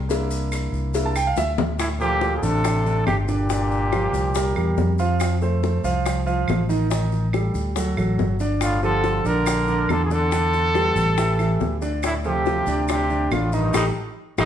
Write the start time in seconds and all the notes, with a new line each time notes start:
Already playing: C2
0.09 A#3 D4 E4, cowbell, maracas
0.31 maracas
0.52 cowbell, claves, maracas
0.72 C2, maracas
0.94 A#3 D4 E4, cowbell, maracas
1.06 A5
1.16 G5, claves, maracas
1.27 F5
1.36 D2 E5, cowbell, high bongo, maracas
1.58 cowbell, low bongo, maracas
1.79 A2 E4, high bongo, claves, maracas
1.99 A#2 F3 F4 G4 A4, high bongo, maracas
2.21 F3 F4 A4, high bongo, maracas
2.36 A#2 G#4
2.42 A1 C3 D3 D4 A4 D5, high bongo, maracas
2.64 high bongo, claves, maracas
2.86 D3 D4 D5, maracas
3.05 G1 C3 G4, high bongo, low bongo, claves, maracas
3.26 A#2 D3 D4 G4 D5, high bongo, maracas
3.49 D3 D4 D5, high bongo, maracas
3.71 high bongo, maracas
3.92 F3 F4 G4, high bongo, claves, maracas
4.13 C2, high bongo, maracas
4.35 G3 G4 A#4, high bongo, maracas
4.56 E2 G3 G4 A#4, claves, maracas
4.77 F2, high bongo, low bongo, maracas
4.99 F3 F4 F5, high bongo, maracas
5.20 high bongo, claves, maracas
5.42 A3 A4 C5, high bongo, maracas
5.63 A3 A4 C5, high bongo, maracas
5.84 C2 F3 F4 F5, high bongo, maracas
6.06 high bongo, claves, maracas
6.26 F3 F4 F5, maracas
6.48 A1, high bongo, low bongo, claves, maracas
6.69 D#3 D#4 D#5, high bongo, maracas
6.90 D#3 D#4 D#5, high bongo, maracas
7.12 high bongo, maracas
7.33 G3 G4 A4, high bongo, claves, maracas
7.54 D2, high bongo, maracas
7.76 F#3 F#4 A4, high bongo, maracas
7.97 A1 F#3 F#4 A4, claves, maracas
8.18 G1, high bongo, low bongo, maracas
8.40 D3 D4 D5, high bongo, maracas
8.61 A2 F4, high bongo, claves, maracas
8.83 D3 F3 F4 G4 A4, high bongo, maracas
9.04 F3 F4 G4, high bongo, maracas
9.25 A#1 D3 D4 A#4 D5, high bongo, maracas
9.46 high bongo, claves, maracas
9.68 D3 D4 D5, maracas
9.89 E2 D3 A4, high bongo, low bongo, claves, maracas
10.04 A#2 G#4
10.11 D3 D4 A4 D5, high bongo, maracas
10.32 D3 D4 D5, high bongo, maracas
10.53 high bongo, maracas
10.74 G3 G4 B4, high bongo, claves, maracas
10.96 A1, high bongo, maracas
11.18 E3 E4 G4, high bongo, maracas
11.39 E3 E4 G4, claves, maracas
11.60 D2, high bongo, low bongo, maracas
11.82 D3 D4 D5, high bongo, maracas
12.03 A2 E4, high bongo, claves, maracas
12.24 C3 F3 F4 G4 A4, high bongo, maracas
12.46 F3 F4 A4, high bongo, maracas
12.67 D2 D3 D4 D5, high bongo, maracas
12.88 C3 G4, high bongo, claves, maracas
13.10 D3 D4 D5, maracas
13.31 A1 A2 F4, high bongo, low bongo, claves, maracas
13.52 G2 D#3 D#4 D#5, high bongo, maracas
13.73 A1 A2 D#4 G4 A4, high bongo, claves, maracas
14.38 A1 A2 D#4 G4 A4, high bongo, claves, maracas